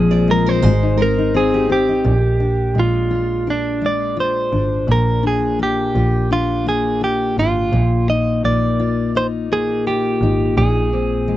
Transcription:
Already playing: double bass A#1, steel-string acoustic guitar A#2 F3 G#3 C4, clean electric guitar G#4
0.11 steel-string acoustic guitar F4, nylon-string guitar D5
0.28 steel-string acoustic guitar G#3, clean electric guitar A#4
0.46 steel-string acoustic guitar C4, nylon-string guitar A#4, clean electric guitar C5
0.62 double bass G#1, steel-string acoustic guitar G#3, nylon-string guitar C5
0.83 steel-string acoustic guitar D#4
0.97 steel-string acoustic guitar C4, nylon-string guitar A#4
1.02 clean electric guitar A#4
1.18 steel-string acoustic guitar D#4
1.34 steel-string acoustic guitar C4, clean electric guitar G#4
1.54 steel-string acoustic guitar G4
1.70 steel-string acoustic guitar C4, clean electric guitar G4
1.89 steel-string acoustic guitar D#4
2.04 double bass A#1, steel-string acoustic guitar A#2
2.40 steel-string acoustic guitar D4
2.75 double bass A#1, steel-string acoustic guitar G#3
2.79 clean electric guitar F4
3.11 steel-string acoustic guitar F4
3.47 steel-string acoustic guitar D4, clean electric guitar D4
3.82 steel-string acoustic guitar G#3
3.86 clean electric guitar D5
4.17 steel-string acoustic guitar F4, clean electric guitar C5
4.52 double bass G#1, steel-string acoustic guitar D4
4.87 double bass A#1, steel-string acoustic guitar A#2
4.92 clean electric guitar A#4
5.23 steel-string acoustic guitar D4, clean electric guitar G#4
5.59 steel-string acoustic guitar A#3, clean electric guitar G4
5.95 double bass A#1, steel-string acoustic guitar F4
6.31 steel-string acoustic guitar D4, clean electric guitar F4
6.67 steel-string acoustic guitar A#3, clean electric guitar G#4
7.01 steel-string acoustic guitar F4, clean electric guitar G4
7.37 double bass G#1, steel-string acoustic guitar D4, clean electric guitar F4
7.72 double bass A#1, steel-string acoustic guitar A#2
8.09 steel-string acoustic guitar D#4, clean electric guitar D#5
8.43 double bass A#1, steel-string acoustic guitar A#3, clean electric guitar D5
8.80 steel-string acoustic guitar F4
9.15 steel-string acoustic guitar D#4, clean electric guitar C5
9.52 steel-string acoustic guitar A#3, clean electric guitar G#4
9.87 steel-string acoustic guitar F4, clean electric guitar G4
10.21 double bass G#1, steel-string acoustic guitar D#4
10.57 double bass A#1, steel-string acoustic guitar A#2, clean electric guitar G#4
10.93 steel-string acoustic guitar C4
11.28 steel-string acoustic guitar G#3

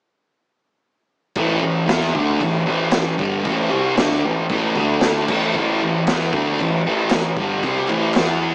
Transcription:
1.35 picked electric bass A1, distorted electric guitar A2 E3 A3, kick, crash
1.61 picked electric bass A1, distorted electric guitar A2 E3
1.86 picked electric bass E2, distorted electric guitar E3 B3 E4, snare, clap, crash
2.03 snare
2.14 picked electric bass D2, distorted electric guitar D3 A3 D4, kick
2.39 picked electric bass A1, distorted electric guitar A2 E3, kick, crash
2.66 picked electric bass A1, distorted electric guitar A2 E3 A3
2.91 picked electric bass A1, distorted electric guitar A2 E3, snare, clap, crash
3.18 picked electric bass G1, distorted electric guitar G2 D3 G3, kick
3.44 picked electric bass A1, distorted electric guitar A2 E3 A3, kick, crash
3.69 distorted electric guitar C3 G3 C4
3.73 picked electric bass C2
3.96 picked electric bass D2, distorted electric guitar D3 A3 D4, snare, clap, crash
4.11 snare
4.24 picked electric bass A1, distorted electric guitar A2 E3
4.49 picked electric bass A1, distorted electric guitar A2 E3 A3, kick, crash
4.76 picked electric bass D2, distorted electric guitar D3 A3 D4, kick
5.01 snare, clap, crash
5.28 picked electric bass A1, distorted electric guitar A2 E3 A3, kick, crash
5.55 picked electric bass A1, distorted electric guitar A2 E3, kick, crash
5.59 distorted electric guitar A3
5.83 picked electric bass A1, distorted electric guitar A2 E3
6.07 picked electric bass E2, distorted electric guitar E3 B3 E4, snare, clap, crash
6.21 snare
6.32 picked electric bass D2, distorted electric guitar D3 A3 D4, kick
6.59 picked electric bass A1, distorted electric guitar A2 E3, kick, crash
6.86 picked electric bass A1, distorted electric guitar A2 E3 A3
7.10 picked electric bass A1, distorted electric guitar A2 E3, snare, clap, crash
7.37 picked electric bass G1, distorted electric guitar G2 D3, kick
7.41 distorted electric guitar G3
7.63 picked electric bass C2, distorted electric guitar C3 G3 C4, kick, crash
7.88 picked electric bass A1, distorted electric guitar A2 E3 A3, clap
8.14 picked electric bass E2, distorted electric guitar E3, snare, clap, crash
8.18 distorted electric guitar B3 E4

